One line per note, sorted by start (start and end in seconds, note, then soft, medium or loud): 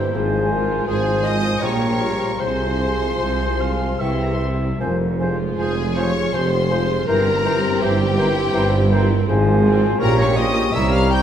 0.00 0.17 G2 medium
0.00 0.11 E3 medium
0.00 0.14 A#3 medium
0.00 0.18 A#3 medium
0.00 0.14 E4 medium
0.00 0.18 E4 medium
0.00 0.14 G4 medium
0.00 0.14 C5 medium
0.00 0.87 C5 medium
0.00 0.17 E5 medium
0.00 0.15 G5 medium
0.14 0.79 G#1 medium
0.14 0.79 G#2 medium
0.14 1.65 G#2 medium
0.14 0.83 F3 medium
0.14 0.51 G#4 medium
0.14 0.84 C5 medium
0.14 0.84 G#5 medium
0.51 1.23 G#3 medium
0.51 1.65 G#3 medium
0.51 1.23 F4 medium
0.51 0.88 A#4 medium
0.87 1.53 G#1 medium
0.87 1.53 G#2 medium
0.87 1.60 F3 medium
0.87 1.25 G#4 medium
0.87 1.22 G#4 medium
0.87 1.63 C5 medium
0.87 1.62 C5 medium
0.87 1.65 C5 medium
0.87 1.60 G#5 medium
0.87 1.22 G#5 medium
1.24 1.61 G#3 medium
1.24 1.61 F4 medium
1.24 1.62 D#5 medium
1.24 3.60 F5 medium
1.24 1.62 D#6 medium
1.60 2.31 A#1 medium
1.60 2.24 A#1 medium
1.60 2.43 A#2 medium
1.60 2.31 A#2 medium
1.60 2.38 F3 medium
1.60 1.99 G3 medium
1.60 2.00 F4 medium
1.60 1.99 F4 medium
1.60 2.41 A#4 medium
1.60 2.39 C#5 medium
1.60 2.40 C#5 medium
1.60 2.40 G5 medium
1.60 2.40 C#6 medium
2.00 2.39 G3 soft
2.00 4.03 F4 soft
2.00 2.39 F4 soft
2.00 2.40 G4 medium
2.00 2.43 A#4 soft
2.39 3.11 C2 medium
2.39 3.99 C3 medium
2.39 3.10 C3 medium
2.39 4.02 F3 medium
2.39 4.36 G#4 medium
2.39 4.36 C5 medium
2.39 3.03 C5 medium
2.39 3.97 G#5 medium
2.39 4.01 C6 medium
2.80 3.58 G#3 medium
2.80 5.19 C4 soft
2.80 3.59 F4 medium
3.20 3.91 C2 medium
3.20 3.91 C3 medium
3.20 4.03 G#4 soft
3.20 3.62 C5 medium
3.60 3.99 G#3 soft
3.60 3.99 F4 soft
3.60 4.01 F5 medium
3.60 4.04 F5 soft
4.00 4.71 C2 medium
4.00 4.71 C3 medium
4.00 4.84 C3 soft
4.00 4.46 E3 soft
4.00 4.39 G3 soft
4.00 4.39 E4 soft
4.00 4.80 E5 medium
4.00 4.47 G5 medium
4.00 4.11 C#6 medium
4.12 4.21 C6 medium
4.21 4.31 A#5 medium
4.31 4.41 C6 medium
4.40 4.80 G3 soft
4.40 4.80 E4 soft
4.40 4.84 E4 soft
4.40 4.84 G4 soft
4.80 5.50 F1 medium
4.80 5.50 F2 medium
4.80 7.11 F2 medium
4.80 4.96 F3 medium
4.80 5.17 A#4 medium
4.80 4.96 C5 medium
4.80 4.90 G#5 medium
5.19 5.37 F3 soft
5.19 5.95 G#3 medium
5.19 7.45 C4 soft
5.19 5.95 F4 medium
5.19 6.33 G#4 medium
5.19 5.38 C5 medium
5.19 5.29 G#5 medium
5.58 6.25 F1 medium
5.58 6.25 F2 medium
5.58 5.75 F3 medium
5.58 5.93 G#4 medium
5.58 6.32 G#4 medium
5.58 5.75 C5 medium
5.58 5.66 G#5 medium
5.58 5.94 G#5 medium
5.95 6.12 F3 medium
5.95 6.69 G#3 medium
5.95 6.69 F4 medium
5.95 6.11 C5 medium
5.95 6.33 C#5 medium
5.95 6.36 C#5 medium
5.95 7.11 F5 medium
5.95 6.04 G#5 medium
5.95 6.33 C#6 medium
6.32 6.99 F1 medium
6.32 7.00 F2 medium
6.32 6.50 F3 medium
6.32 6.70 G4 medium
6.32 7.11 G#4 medium
6.32 7.08 C5 medium
6.32 6.50 C5 medium
6.32 7.09 C5 medium
6.32 6.40 G#5 medium
6.32 7.08 C6 medium
6.69 6.87 F3 medium
6.69 7.07 G#3 medium
6.69 7.07 F4 medium
6.69 7.11 F4 medium
6.69 7.08 G#4 medium
6.69 6.87 C5 medium
6.69 6.78 G#5 medium
7.07 7.74 G1 medium
7.07 9.32 G2 medium
7.07 7.74 G2 medium
7.07 7.25 E3 medium
7.07 7.44 C4 medium
7.07 7.45 E4 medium
7.07 7.84 A#4 medium
7.07 7.44 A#4 medium
7.07 7.81 A#4 medium
7.07 7.24 C5 medium
7.07 7.80 A#5 loud
7.07 7.16 A#5 medium
7.44 7.62 E3 medium
7.44 8.17 C4 medium
7.44 10.05 C4 medium
7.44 8.16 E4 medium
7.44 7.82 G4 medium
7.44 7.61 C5 medium
7.44 7.53 A#5 medium
7.81 8.46 G1 medium
7.81 8.46 G2 medium
7.81 7.98 E3 medium
7.81 9.29 G4 medium
7.81 9.29 G4 loud
7.81 8.54 A#4 medium
7.81 8.18 C5 medium
7.81 7.98 C5 medium
7.81 9.29 G5 loud
7.81 7.89 A#5 medium
8.18 8.34 E3 medium
8.18 8.90 C4 medium
8.18 8.90 E4 medium
8.18 8.55 A#4 medium
8.18 8.34 C5 medium
8.18 9.32 E5 medium
8.18 8.26 A#5 medium
8.53 9.21 G1 medium
8.53 9.21 G2 medium
8.53 8.70 E3 medium
8.53 9.32 A#4 medium
8.53 8.92 C5 medium
8.53 8.70 C5 medium
8.53 8.62 A#5 medium
8.92 9.08 E3 medium
8.92 9.28 C4 medium
8.92 9.28 E4 medium
8.92 9.32 E4 medium
8.92 9.29 A#4 medium
8.92 9.08 C5 medium
8.92 9.00 A#5 medium
9.28 9.84 G#1 loud
9.28 9.93 G#1 medium
9.28 9.93 G#2 loud
9.28 10.04 G#2 medium
9.28 9.98 F3 medium
9.28 10.00 G#4 medium
9.28 10.01 C5 medium
9.28 9.97 G#5 medium
9.65 10.01 C4 medium
9.65 10.00 F4 medium
9.65 10.37 F4 medium
9.65 10.05 G#4 medium
9.99 10.66 A#1 medium
9.99 10.66 A#2 medium
9.99 10.78 A#2 medium
9.99 10.76 F3 medium
9.99 10.37 C#4 medium
9.99 10.72 G4 medium
9.99 10.37 G4 medium
9.99 10.17 A#4 medium
9.99 10.18 A#4 medium
9.99 10.74 C#5 medium
9.99 10.75 G5 medium
9.99 10.18 A#5 loud
10.18 10.38 C#5 medium
10.18 10.38 C#6 medium
10.36 10.74 C#4 medium
10.36 10.78 F4 medium
10.36 10.74 G4 medium
10.36 11.12 G4 medium
10.36 10.74 D#5 medium
10.36 10.75 D#5 medium
10.36 10.75 D#6 loud
10.72 11.22 C2 medium
10.72 11.22 C3 medium
10.72 11.22 G3 medium
10.72 11.11 C#4 medium
10.72 11.22 G4 medium
10.72 11.12 A#4 medium
10.72 11.22 C#5 medium
10.72 10.92 E5 medium
10.72 10.93 E5 medium
10.72 11.22 A#5 medium
10.72 10.94 E6 medium
10.90 11.10 F5 medium
10.90 11.11 F5 medium
10.90 11.12 F6 medium
11.10 11.22 C#4 medium
11.10 11.22 C#4 soft
11.10 11.22 G4 medium
11.10 11.22 A#4 medium
11.10 11.22 G5 medium
11.10 11.22 G6 medium